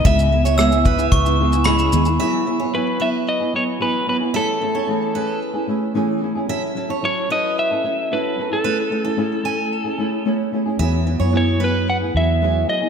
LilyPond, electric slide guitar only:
\new Staff \with { instrumentName = "Electric slide guitar" } { \time 4/4 \key e \major \tempo 4 = 112 e''2.~ e''8 r8 | r4 b'8 e''8 dis''8 cis''8 b'8 b'8 | a'2 r2 | r4 cis''8 dis''8 e''4 b'8. a'16~ |
a'2~ a'8. r4 r16 | r4 cis''8 b'8 fis''8 e''4 dis''8 | }